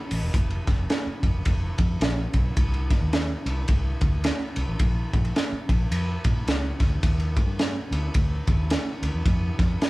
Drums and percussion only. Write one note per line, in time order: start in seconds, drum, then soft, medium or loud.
0.11 open hi-hat medium
0.11 ride medium
0.34 kick loud
0.34 hi-hat pedal medium
0.34 ride medium
0.50 ride soft
0.67 kick loud
0.67 snare soft
0.67 ride medium
0.90 snare loud
0.90 ride medium
1.23 kick loud
1.23 ride medium
1.45 kick loud
1.45 ride medium
1.78 kick loud
1.78 ride medium
2.01 snare loud
2.01 ride medium
2.33 kick medium
2.33 ride medium
2.57 kick loud
2.57 ride medium
2.74 ride soft
2.90 kick loud
2.90 snare soft
2.90 ride medium
3.13 snare loud
3.13 ride medium
3.46 ride medium
3.68 kick loud
3.68 ride medium
4.01 kick loud
4.01 ride medium
4.24 snare loud
4.24 ride medium
4.56 ride medium
4.79 kick loud
4.79 ride medium
5.13 kick loud
5.13 ride medium
5.25 ride soft
5.36 snare loud
5.36 ride medium
5.69 kick loud
5.69 ride medium
5.92 ride medium
6.24 kick loud
6.24 ride medium
6.48 snare loud
6.48 ride medium
6.80 kick loud
6.80 snare soft
6.80 ride medium
7.03 kick loud
7.03 ride medium
7.20 ride soft
7.36 kick loud
7.36 ride medium
7.59 snare loud
7.59 ride medium
7.92 ride medium
8.14 kick loud
8.14 ride medium
8.47 kick loud
8.47 ride medium
8.70 snare loud
8.70 ride medium
9.03 ride medium
9.26 kick loud
9.26 ride medium
9.59 kick loud
9.59 snare soft
9.59 ride medium
9.81 snare loud
9.81 ride medium